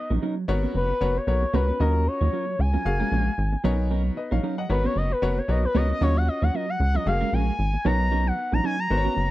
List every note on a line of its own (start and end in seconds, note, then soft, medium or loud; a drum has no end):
0.00 0.28 B3 medium
0.00 0.28 D#4 medium
0.00 0.28 A#4 medium
0.00 0.28 C#5 medium
0.00 0.11 D#5 loud
0.10 0.19 A#1 loud
0.10 0.21 F#3 soft
0.10 0.21 C#4 medium
0.10 0.22 D#4 medium
0.10 0.22 A#4 medium
0.22 0.44 F#3 medium
0.22 0.36 C#4 medium
0.22 0.36 D#4 loud
0.22 0.36 A#4 loud
0.37 muted clean electric guitar stroke soft
0.48 0.67 G#1 loud
0.48 0.92 B3 medium
0.48 0.92 F#4 medium
0.48 0.92 A#4 medium
0.48 0.92 C#5 loud
0.48 muted clean electric guitar stroke soft
0.63 0.73 B3 soft
0.63 0.73 C#4 medium
0.63 0.74 F#4 medium
0.63 0.74 A#4 medium
0.74 0.93 F#1 loud
0.74 1.19 B4 medium
0.74 muted clean electric guitar stroke soft
0.89 muted clean electric guitar stroke soft
1.01 1.19 F#1 medium
1.01 1.15 B3 medium
1.01 1.15 F#4 medium
1.01 1.15 A#4 medium
1.01 1.15 C#5 medium
1.16 1.56 C#5 medium
1.16 muted clean electric guitar stroke soft
1.27 1.45 B1 medium
1.27 1.41 B3 medium
1.27 1.42 F#4 medium
1.27 1.42 A#4 medium
1.27 1.42 C#5 medium
1.27 muted clean electric guitar stroke soft
1.42 muted clean electric guitar stroke soft
1.53 1.72 C#2 loud
1.53 1.68 B3 medium
1.53 1.68 C#4 medium
1.53 1.68 F#4 medium
1.53 1.68 F#4 loud
1.53 1.68 A#4 medium
1.53 1.68 A#4 loud
1.53 1.82 B4 medium
1.53 1.68 C#5 medium
1.68 1.79 B3 medium
1.68 1.79 C#4 medium
1.68 1.80 F#4 medium
1.68 1.81 B4 medium
1.80 2.08 D#2 loud
1.80 2.02 F#3 medium
1.80 2.30 C#4 medium
1.80 1.94 C#4 medium
1.80 2.31 F4 medium
1.80 1.94 F4 medium
1.80 2.31 F#4 medium
1.80 2.09 A#4 medium
1.80 1.94 A#4 loud
1.80 2.31 D#5 medium
1.95 muted clean electric guitar stroke soft
2.06 2.61 C#5 loud
2.06 muted clean electric guitar stroke soft
2.21 2.29 D#2 medium
2.21 2.31 F#3 medium
2.21 2.32 C#4 medium
2.21 2.32 F4 medium
2.21 2.33 C#5 medium
2.32 2.54 F#3 medium
2.32 2.47 C#4 medium
2.32 2.46 F4 medium
2.32 2.46 A#4 medium
2.47 muted clean electric guitar stroke soft
2.59 2.77 C#2 loud
2.59 3.91 G#5 loud
2.59 muted clean electric guitar stroke soft
2.73 2.85 F#3 soft
2.73 2.84 C#4 soft
2.73 2.85 F4 medium
2.73 2.85 A#4 medium
2.85 3.03 F#1 loud
2.85 3.30 A#3 medium
2.85 3.30 F#4 medium
2.85 3.30 G#4 medium
2.85 3.31 F5 medium
2.85 muted clean electric guitar stroke soft
3.00 3.10 G#3 medium
3.00 3.11 C#4 medium
3.00 3.11 F4 medium
3.00 3.11 A#4 medium
3.11 3.30 A#1 medium
3.11 3.30 G#3 medium
3.11 3.26 C#4 medium
3.11 3.25 F4 medium
3.11 3.25 A#4 medium
3.26 muted clean electric guitar stroke soft
3.38 3.56 G#1 loud
3.52 muted clean electric guitar stroke soft
3.64 4.11 B1 loud
3.64 3.86 F#3 medium
3.64 4.49 B3 medium
3.64 3.78 C#4 medium
3.64 4.49 D#4 medium
3.64 3.78 D#4 medium
3.64 4.17 A#4 medium
3.64 3.77 A#4 medium
3.64 4.17 C#5 loud
3.79 muted clean electric guitar stroke medium
3.90 4.12 F#3 medium
3.90 4.05 C#4 medium
3.90 4.04 D#4 medium
3.90 4.04 A#4 loud
4.05 muted clean electric guitar stroke soft
4.16 4.31 B4 medium
4.16 4.31 D#5 medium
4.16 muted clean electric guitar stroke soft
4.31 4.40 A#1 loud
4.31 4.42 F#3 medium
4.31 4.42 C#4 medium
4.31 4.42 D#4 medium
4.31 4.43 A#4 medium
4.31 4.57 C#5 medium
4.31 4.57 F5 medium
4.43 4.65 F#3 medium
4.43 4.57 C#4 medium
4.43 4.57 D#4 medium
4.43 4.56 A#4 loud
4.58 4.83 D#5 medium
4.58 4.83 F#5 medium
4.58 muted clean electric guitar stroke soft
4.69 4.88 G#1 loud
4.69 5.13 B3 medium
4.69 5.13 F#4 medium
4.69 5.13 A#4 medium
4.69 4.87 B4 medium
4.69 5.13 C#5 medium
4.69 muted clean electric guitar stroke soft
4.84 4.94 B3 medium
4.84 4.95 C#4 medium
4.84 4.95 F#4 medium
4.84 4.95 A#4 medium
4.84 4.99 C#5 medium
4.96 5.14 F#1 loud
4.96 5.13 D#5 medium
5.10 5.40 B4 medium
5.10 muted clean electric guitar stroke soft
5.22 5.40 F#1 medium
5.22 5.36 B3 medium
5.22 5.36 F#4 medium
5.22 5.36 A#4 medium
5.22 5.37 C#5 loud
5.37 5.52 C#5 medium
5.37 muted clean electric guitar stroke soft
5.48 5.67 B1 loud
5.48 5.62 B3 medium
5.48 5.63 F#4 medium
5.48 5.63 A#4 medium
5.48 5.63 C#5 medium
5.48 5.64 D#5 medium
5.48 muted clean electric guitar stroke soft
5.63 5.78 B4 medium
5.63 muted clean electric guitar stroke soft
5.74 5.93 C#2 medium
5.74 5.89 B3 medium
5.74 5.89 C#4 medium
5.74 5.89 F#4 medium
5.74 5.88 F#4 loud
5.74 5.89 A#4 medium
5.74 5.89 A#4 loud
5.74 5.89 C#5 medium
5.74 5.90 D#5 medium
5.89 6.00 B3 medium
5.89 6.00 C#4 medium
5.89 6.01 F#4 medium
5.89 6.02 B4 medium
5.89 6.04 D#5 medium
6.01 6.29 D#2 loud
6.01 6.23 F#3 medium
6.01 6.52 C#4 medium
6.01 6.15 C#4 medium
6.01 6.52 F4 medium
6.01 6.15 F4 loud
6.01 6.52 F#4 medium
6.01 6.14 A#4 medium
6.01 6.18 C#5 medium
6.01 6.52 D#5 medium
6.16 6.30 F#5 medium
6.16 muted clean electric guitar stroke medium
6.27 6.45 D#5 medium
6.27 muted clean electric guitar stroke soft
6.42 6.50 D#2 medium
6.42 6.53 F#3 medium
6.42 6.53 C#4 medium
6.42 6.53 F4 medium
6.42 6.54 C#5 medium
6.42 6.56 F#5 loud
6.54 6.76 F#3 medium
6.54 6.68 C#4 medium
6.54 6.68 F4 medium
6.54 6.67 A#4 loud
6.54 6.71 D#5 loud
6.68 6.80 F#5 loud
6.68 muted clean electric guitar stroke medium
6.80 6.98 C#2 loud
6.80 6.97 F#5 medium
6.80 muted clean electric guitar stroke soft
6.94 7.06 F#3 medium
6.94 7.05 C#4 medium
6.94 7.05 F4 medium
6.94 7.06 A#4 medium
6.94 7.09 D#5 medium
7.06 7.24 F#1 loud
7.06 7.13 G#3 medium
7.06 7.51 F#4 medium
7.06 7.51 G#4 medium
7.06 7.52 F5 medium
7.06 7.35 F5 loud
7.06 muted clean electric guitar stroke soft
7.12 7.54 A#3 medium
7.21 7.31 G#3 medium
7.21 7.31 C#4 medium
7.21 7.32 F4 medium
7.21 7.32 A#4 medium
7.32 7.51 A#1 medium
7.32 7.51 G#3 medium
7.32 7.47 C#4 medium
7.32 7.46 F4 medium
7.32 7.46 A#4 medium
7.32 7.88 G#5 loud
7.47 muted clean electric guitar stroke soft
7.59 7.77 G#1 loud
7.73 muted clean electric guitar stroke soft
7.85 8.31 B1 loud
7.85 8.07 F#3 medium
7.85 8.70 B3 medium
7.85 7.99 C#4 loud
7.85 8.70 D#4 medium
7.85 7.99 D#4 loud
7.85 8.70 A#4 medium
7.85 7.98 A#4 loud
7.85 8.70 C#5 medium
7.85 8.29 A#5 loud
8.00 muted clean electric guitar stroke soft
8.11 8.33 F#3 loud
8.11 8.26 C#4 loud
8.11 8.25 D#4 loud
8.11 8.25 A#4 loud
8.26 8.55 F#5 medium
8.26 muted clean electric guitar stroke soft
8.37 muted clean electric guitar stroke soft
8.52 8.61 A#1 medium
8.52 8.62 F#3 medium
8.52 8.63 C#4 medium
8.52 8.63 D#4 medium
8.52 8.63 A#4 medium
8.52 8.64 A#5 loud
8.63 8.86 F#3 medium
8.63 8.78 C#4 medium
8.63 8.78 D#4 medium
8.63 8.77 A#4 medium
8.63 8.81 G#5 loud
8.78 9.31 A#5 loud
8.78 muted clean electric guitar stroke soft
8.90 9.09 G#1 loud
8.90 9.31 B3 medium
8.90 9.31 F#4 medium
8.90 9.31 A#4 medium
8.90 8.98 C5 medium
8.90 muted clean electric guitar stroke soft
8.97 9.31 C#5 medium
9.05 9.15 B3 medium
9.05 9.15 C#4 medium
9.05 9.16 F#4 medium
9.05 9.16 A#4 medium
9.16 9.31 F#1 loud
9.16 muted clean electric guitar stroke soft